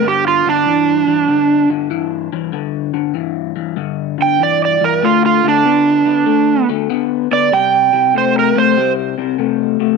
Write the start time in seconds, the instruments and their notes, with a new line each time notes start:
0.04 clean electric guitar G2 D3
0.08 electric slide guitar G4
0.28 electric slide guitar F4
0.46 clean electric guitar G2 D3, electric slide guitar D4
0.66 clean electric guitar G2 E3
1.07 clean electric guitar G2 E3
1.28 clean electric guitar G2 D3
1.70 clean electric guitar G2 D3
1.90 clean electric guitar G2 E3
2.32 clean electric guitar G2 E3
2.52 clean electric guitar G2 D3
2.93 clean electric guitar G2 D3
3.14 clean electric guitar G2 E3
3.56 clean electric guitar G2 E3
3.76 clean electric guitar G2 D3
4.18 clean electric guitar G2 D3
4.22 electric slide guitar G5
4.39 clean electric guitar G2 E3, electric slide guitar D5
4.65 electric slide guitar D5
4.81 clean electric guitar G2 E3, electric slide guitar A#4
5.02 clean electric guitar D3 A3, electric slide guitar F4
5.26 electric slide guitar F4
5.44 clean electric guitar D3 A3
5.48 electric slide guitar D4
5.65 clean electric guitar D3 B3
6.05 clean electric guitar D3 B3
6.26 clean electric guitar D3 A3
6.69 clean electric guitar D3 A3
6.90 clean electric guitar D3 B3
7.31 clean electric guitar D3 B3, electric slide guitar D5
7.52 clean electric guitar C3 G3, electric slide guitar G5
7.93 clean electric guitar C3 G3
8.14 clean electric guitar C3 A3, electric slide guitar C5
8.39 electric slide guitar A#4
8.55 clean electric guitar C3 A3, electric slide guitar C5
8.77 clean electric guitar C3 G3
9.18 clean electric guitar C3 G3
9.38 clean electric guitar C3 A3
9.80 clean electric guitar C3 A3